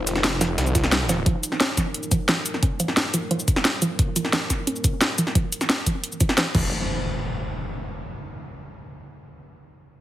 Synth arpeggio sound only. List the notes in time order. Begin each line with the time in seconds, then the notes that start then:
0.24 C4
0.41 F3
0.75 F4
0.92 G3
1.09 F3
1.26 F3
1.60 C#4
1.77 F3
2.11 F3
2.29 F3
2.63 C#4
2.80 F3
3.14 F3
3.31 F3
3.65 C#4
3.82 F3
4.16 F3
4.33 F3
4.67 C#4
4.84 F3
5.18 F3
5.35 F3
5.69 C#4
5.86 F3
6.21 F3
6.38 F3
6.55 F3